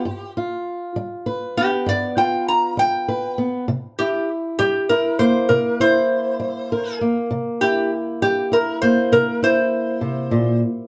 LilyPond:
<<
  \new Staff \with { instrumentName = "Resonator guitar played with a steel bar" } { \time 12/8 \key c \major \tempo 4. = 66 g'8 r2 g'8 d''8 g''8 bes''8 g''4 r8 | r8 g'8 r8 g'8 bes'8 c''8 bes'8 c''2 r8 | r8 g'8 r8 g'8 bes'8 c''8 bes'8 c''2 r8 | }
  \new Staff \with { instrumentName = "Steel-string acoustic guitar" } { \time 12/8 \key c \major << { r8 f'4. b'8 b4 f'4. b'8 b8 | r8 e'4. e'8 bes4 e'4. bes'8 bes8~ | bes8 e'4. e'8 bes4 e'2~ e'8 | } \\ { g,4 r8 g4 r8 g,4 r8 g4 r8 | c4 r8 g4 r8 c4 r8 g4 r8 | c4 r8 g4 r8 c4 r8 c8 bes,8 r8 | } >> }
>>